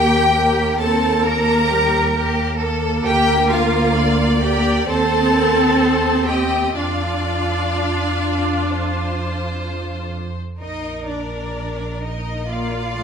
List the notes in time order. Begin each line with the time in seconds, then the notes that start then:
Already playing: D#2 A#3 G4 A#4 G5
0.35 A#3 A#4
0.79 C4 A4 A5
1.24 A#3 A4 A#4 A#5
1.70 G3 G4
2.14 A#3 G4
2.59 A4
3.04 D2 G4 A#4 G5
3.50 F4 F5
3.97 D5
4.42 G4 G5
4.88 D#2 C4 A4 C5 A5
5.35 A#4
5.80 C5
6.26 G4 D#5 G5
6.74 F2 D4 F4 D5 F5
8.70 C5
10.59 A#1 D#4 A#4 D#5
11.08 D4 D5
12.03 D#4 D#5
12.48 A#3 F4 D5 F5
12.97 A3